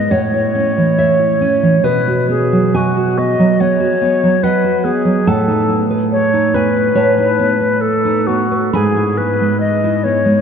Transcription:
Already playing: G#3 D#5
0.11 A2 C#5 F#5
0.34 E4
0.55 C#4
0.78 E3
0.98 C#5 E5
1.19 E4
1.41 C#4
1.63 E3
1.83 B2 B4 D#5
2.08 F#4
2.29 B3 G#4
2.53 F#3
2.75 F#4 D#5 G#5
2.97 F#4
3.18 B3 D#5
3.39 F#3
3.60 B3 C#5 D#5 F#5
3.80 F#4
4.02 B3
4.23 F#3
4.43 B4 D#5 F#5
4.64 F#4
4.84 B3 G#4
5.05 F#3
5.27 A2 A4 F#5 A5
5.48 D#4
5.69 B3
5.91 B4
6.12 C#5
6.34 D#4
6.54 B3 B4 G#5 B5
6.76 B4
6.95 A2 C#5 A5
7.18 D#4
7.39 B3
7.60 B4
7.81 A4
8.05 D#4
8.27 B3 F#4
8.51 B4
8.73 G#2 G#4 G#5 B5
8.96 E4
9.18 B3 B4
9.41 G#3
9.60 D#5
9.84 E4
10.04 B3 C#5
10.26 G#3

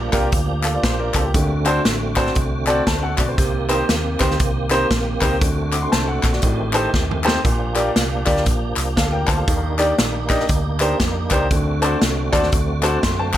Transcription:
Already playing: F3 A#3 D4 G4
0.12 C2 A#3 D4 F4 G4 A#4, kick, clap, closed hi-hat
0.32 D2, kick, closed hi-hat
0.64 A4 F5, clap, closed hi-hat
0.74 F4 D5
0.83 A#1 C5, kick, snare, closed hi-hat
1.00 D4 A#4
1.14 C#2 C4 A4, kick, clap, closed hi-hat
1.25 A#3 G4
1.34 D2 D3 A3 C4 F#4, kick, closed hi-hat
1.65 C4 D4 F#4 A4 C5, clap, closed hi-hat
1.85 A1, snare, closed hi-hat
2.16 C4 D4 F#4 A4 C5, kick, snare, clap, closed hi-hat
2.26 snare
2.35 C2, kick, closed hi-hat
2.67 C4 D4 F#4 A4 D5, clap, closed hi-hat
2.87 D2 C5 A5, kick, snare, closed hi-hat
3.03 A4 F#5
3.18 B1 F#4 D5, kick, clap, closed hi-hat
3.28 C5
3.38 C2 C3 D#3 A#3 G4, kick, closed hi-hat
3.69 C4 D#4 G4 A#4 C5, clap, closed hi-hat
3.89 D#2, snare, closed hi-hat
4.20 D2 C4 D#4 G4 A#4 C5, kick, snare, clap, closed hi-hat
4.31 snare
4.39 C2, kick, closed hi-hat
4.70 C4 D#4 G4 A#4 C5, clap, closed hi-hat
4.91 A#1, kick, snare, closed hi-hat
5.21 C#2 C4 D#4 G4 A#4 C5, kick, clap, closed hi-hat
5.40 D2 D3 A3 C4 F#4, kick, closed hi-hat
5.72 F#5 D6, clap, closed hi-hat
5.82 C6
5.92 C2 C5 A5, snare, closed hi-hat
6.07 A4 F#5
6.23 A#1, kick, snare, clap, closed hi-hat
6.33 F#4 D5, snare
6.42 A1 A2 D#3 G4, kick, closed hi-hat
6.73 C4 D#4 G4 A4 C5, clap, closed hi-hat
6.94 D#2, kick, snare
7.11 mid tom
7.24 C4 D#4 G4 A4 C5, snare, clap
7.44 A#1 A#2 F3 A#3 D4, kick, closed hi-hat
7.75 D4 F4 G4 A#4 D5, clap, closed hi-hat
7.96 C2, snare, closed hi-hat
8.25 D2 D4 F4 G4 A#4 D5, kick, snare, clap, closed hi-hat
8.37 snare
8.46 A#1, kick, closed hi-hat
8.77 C2, clap, closed hi-hat
8.96 D2 A4 F5, kick, snare, closed hi-hat
9.12 A#4 G5
9.27 D2 C5 A5, kick, clap, closed hi-hat
9.37 A4 F5
9.47 D#2 D#3 A#3 D#4, kick, closed hi-hat
9.78 D4 D#4 G4 A#4 D5, clap, closed hi-hat
9.98 A#1, snare, closed hi-hat
10.29 D4 D#4 G4 A#4 D#5, kick, snare, clap, closed hi-hat
10.40 snare
10.49 D2, kick, closed hi-hat
10.80 D4 D#4 G4 A#4 C5, clap, closed hi-hat
11.00 F2, kick, snare, closed hi-hat
11.31 C#2 D4 D#4 G4 A#4 C5, kick, clap, closed hi-hat
11.50 D2 D3 A3 C4 F#4, kick, closed hi-hat
11.82 D4 F#4 A4 C5 D5, clap, closed hi-hat
12.02 C2, snare, closed hi-hat
12.32 D#2 D4 F#4 A4 C5 D5, kick, snare, clap, closed hi-hat
12.43 snare
12.52 D2, kick, closed hi-hat
12.83 D4 F#4 A4 C5 D5, clap, closed hi-hat
13.03 F#2 C6, kick, snare, closed hi-hat
13.19 C5 A5
13.34 F#5, kick, clap

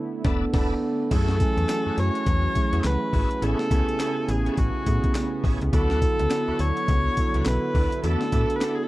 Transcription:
Already playing: D3 A3 B3 D4 E4 A4
0.24 E1 B3 D4 E4 A4, kick, snare
0.53 E1 B3 D4 E4 A4, kick, snare, crash
1.11 F#2 E3 F#3 A3 E4 F#4 G#4 A4, kick, closed hi-hat, crash, tambourine
1.28 snare
1.40 A3 C#4 E4 G#5, kick, closed hi-hat, tambourine
1.57 E2, closed hi-hat
1.69 snare, clap, closed hi-hat, tambourine
1.86 F#2 A3 E4 F#4 G#4
1.98 F#2 C#5, closed hi-hat, tambourine
2.15 closed hi-hat
2.26 E2, kick, closed hi-hat, tambourine
2.55 A3 C#4 E4 G#4, kick, closed hi-hat, tambourine
2.73 E2 A3 E4 F#4 G#4, closed hi-hat
2.84 C#2 B4, snare, clap, closed hi-hat, tambourine
3.13 G#1 A3 E4 F#4 G#4, kick, open hi-hat
3.31 closed hi-hat
3.42 A1 C#3 A3 B3 C#4 E4 G#4 A4 G#5, closed hi-hat, tambourine
3.59 snare
3.71 C#2 A3 B3 C#4 E4 G4 G#4, kick, closed hi-hat, tambourine
3.79 G#5
3.89 closed hi-hat
4.00 A3 B3 C#4 G#4, snare, clap, closed hi-hat, tambourine
4.29 A1 G#4, closed hi-hat, tambourine
4.46 A3 B3 C#4 G#4, closed hi-hat
4.57 A1 F#4, kick, closed hi-hat, tambourine
4.86 A2 B3 C#4 E4 G#4, kick, closed hi-hat, tambourine
5.04 kick, closed hi-hat
5.15 snare, clap, closed hi-hat, tambourine
5.44 A1 A3 B3 C#4 G#4, kick, open hi-hat
5.61 C#2, closed hi-hat
5.73 D2 D3 F#3 B3 D4 E4 F#4 A4, kick, closed hi-hat, tambourine
5.90 snare
6.02 B3 E4 F#4 A4, kick, closed hi-hat, tambourine
6.19 C#2, closed hi-hat
6.31 snare, clap, closed hi-hat, tambourine
6.48 D2 B3 D4 E4 F#4
6.59 D2 C#5, closed hi-hat, tambourine
6.77 closed hi-hat
6.88 C#2, kick, closed hi-hat, tambourine
7.17 B3 E4 F#4 A4, kick, closed hi-hat, tambourine
7.34 C#2 B3 D4 E4 F#4, closed hi-hat
7.46 B1 B4, snare, clap, closed hi-hat, tambourine
7.75 D2 B3 D4 E4 F#4, kick, open hi-hat
7.92 closed hi-hat
8.03 E2 D3 A3 B3 D4 E4 F#4 A4, closed hi-hat, tambourine
8.21 snare
8.32 A2 B3 D4 E4 F#4 A4, kick, closed hi-hat, tambourine
8.50 closed hi-hat
8.56 B4
8.61 B3 D4 E4 A4, snare, clap, closed hi-hat, tambourine
8.75 G#4
8.83 A4

